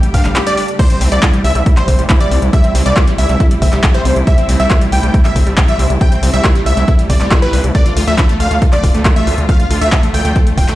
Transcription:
Already playing: D3 G3 A3 G4
0.03 G3, closed hi-hat
0.14 G2 D4 F5, kick, open hi-hat
0.25 G1 G3, clap, closed hi-hat
0.36 G4, clap, closed hi-hat
0.47 G3 D5, closed hi-hat
0.57 D4, open hi-hat
0.68 closed hi-hat
0.79 C3 G3 A3 E4 C5, kick, closed hi-hat, crash
0.90 C4, closed hi-hat
1.01 C2 C4, open hi-hat
1.12 C2 G3 D5, closed hi-hat
1.23 E4, kick, clap, closed hi-hat
1.34 G3, closed hi-hat
1.44 C2 E5, open hi-hat
1.55 C2 G3, closed hi-hat
1.66 E4, kick, closed hi-hat
1.77 G3 C5, clap, closed hi-hat
1.88 G1 C4, kick, open hi-hat
1.99 C2 G3, closed hi-hat
2.10 E4, kick, clap, closed hi-hat
2.20 G3 D5, closed hi-hat
2.31 C2 C4, open hi-hat
2.42 C2, closed hi-hat
2.53 G3 E5, kick, closed hi-hat
2.64 C4, closed hi-hat
2.75 C2 C4, open hi-hat
2.86 C2 G3 D5, closed hi-hat
2.97 E4, kick, clap, closed hi-hat
3.08 G3, closed hi-hat
3.18 C2 E5, open hi-hat
3.29 C2 G3, closed hi-hat
3.40 E4, kick, closed hi-hat
3.51 G3, closed hi-hat
3.62 G1 C4 E5, kick, open hi-hat
3.73 C2 G3, clap, closed hi-hat
3.84 E4, kick, clap, closed hi-hat
3.94 G3 C5, closed hi-hat
4.05 C2 C4, open hi-hat
4.16 C2, closed hi-hat
4.27 G3 E5, kick, closed hi-hat
4.38 C4, closed hi-hat
4.49 C2 C4, open hi-hat
4.60 C2 G3 E5, closed hi-hat
4.71 E4, kick, clap, closed hi-hat
4.81 G3, closed hi-hat
4.92 C2 G5, open hi-hat
5.03 C2 G3, closed hi-hat
5.14 E4, kick, closed hi-hat
5.25 G3 E5, clap, closed hi-hat
5.36 G1 C4, kick, open hi-hat
5.47 C2 G3, closed hi-hat
5.58 E4, kick, clap, closed hi-hat
5.68 G3 E5, closed hi-hat
5.79 C2 C4, open hi-hat
5.90 C2, closed hi-hat
6.01 G3 G5, kick, closed hi-hat
6.12 C4, closed hi-hat
6.23 C2 C4, open hi-hat
6.33 C2 G3 E5
6.44 E4, kick, clap, closed hi-hat
6.55 G3, closed hi-hat
6.66 C2 E5, open hi-hat
6.77 C2 G3, closed hi-hat
6.88 E4, kick, closed hi-hat
6.99 G3, closed hi-hat
7.10 G1 C4 D5, kick, open hi-hat
7.21 C2 G3, clap, closed hi-hat
7.31 E4, kick, clap, closed hi-hat
7.42 G3 B4, closed hi-hat
7.53 C2 C4, open hi-hat
7.64 C2, closed hi-hat
7.75 D3 F3 A3 F4 D5, kick, closed hi-hat
7.86 F4, closed hi-hat
7.97 D2 F4, open hi-hat
8.07 D2 A3 E5
8.18 A4, kick, clap, closed hi-hat
8.29 A3, closed hi-hat
8.40 D2 F5, open hi-hat
8.51 D2 A3, closed hi-hat
8.62 A4, kick, closed hi-hat
8.73 A3 D5, clap, closed hi-hat
8.84 D1 F4, kick, open hi-hat
8.94 D2 A3, closed hi-hat
9.05 A4, kick, clap, closed hi-hat
9.16 A3 E5, closed hi-hat
9.27 D2 F4, open hi-hat
9.38 D2, closed hi-hat
9.49 A3 F5, kick, closed hi-hat
9.60 F4, closed hi-hat
9.70 D2 F4, open hi-hat
9.81 D2 A3 E5, closed hi-hat
9.92 A4, kick, clap, closed hi-hat
10.03 A3, closed hi-hat
10.14 D2 G5, open hi-hat
10.25 D2 A3, closed hi-hat
10.36 A4, kick, closed hi-hat
10.47 A3, closed hi-hat
10.57 D1 F4 G5, kick, open hi-hat
10.68 D2 A3, clap, closed hi-hat

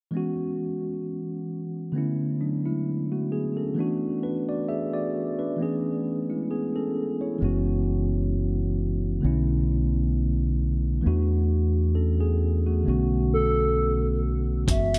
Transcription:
0.11 E3 G#3 B3
0.15 C#4 F#4
1.92 D3 A3 B3
1.97 C#4 E4
2.41 F#3 D4
2.66 G#3 E4
3.12 A3 F#4
3.32 B3 G#4
3.57 C#4 A4
3.75 E3 A3 B3
3.79 D4 F#4
4.23 D4 B4
4.49 F#4 D5
4.69 G#4 E5
4.94 F#4 D5
5.39 D4 B4
5.57 E3 A3 B3
5.61 C#4 G#4
6.30 G#3 E4
6.51 B3 G#4
6.76 C#4 A4
7.21 E4 C#5
7.39 F#1 E3 G#3 B3
7.43 C#4 F#4
9.21 B1 D3 A3 B3
9.25 C#4 E4
11.01 E3 A3 B3
11.06 E2 D4 F#4
11.95 C#4 A4
12.21 B3 G#4
12.66 A3 F#4
12.84 B1 D3 A3 B3
12.88 C#4 F#4
13.34 A4
14.66 F#1 E3 G#3 B3 C#4 F#4 E5, kick, closed hi-hat
14.94 closed hi-hat

